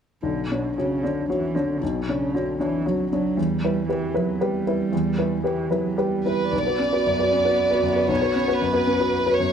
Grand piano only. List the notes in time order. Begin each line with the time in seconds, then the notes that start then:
0.23 B1
0.51 D4 C#5
0.78 F#4 C#5
1.04 D4 C#5
1.30 F#4 C#5
1.55 D4 C#5
1.83 B1
2.09 D4 C#5
2.35 F#4 C#5
2.60 D4 C#5
2.86 F#4 C#5
3.12 D4 C#5
3.38 E2
3.64 E4 B4
3.89 G4 B4
4.14 E4 B4
4.41 G4 B4
4.67 E4 B4
4.92 E2
5.18 E4 B4
5.44 G4 B4
5.70 E4 B4
5.98 G4 B4
6.26 E4 B4
6.52 B1
6.66 F#4 B4
6.79 C#4
6.92 F#4 B4
7.06 F#2
7.19 F#4 B4
7.32 C#4
7.45 F#4 B4
7.71 F#4 B4
7.83 F#2
7.95 F#4 B4
8.08 B1
8.22 F#4 B4
8.35 C#4
8.48 F#4 B4
8.62 F#2
8.73 F#4 B4
8.87 C#4
9.00 F#4 B4
9.26 F#4 B4
9.40 F#2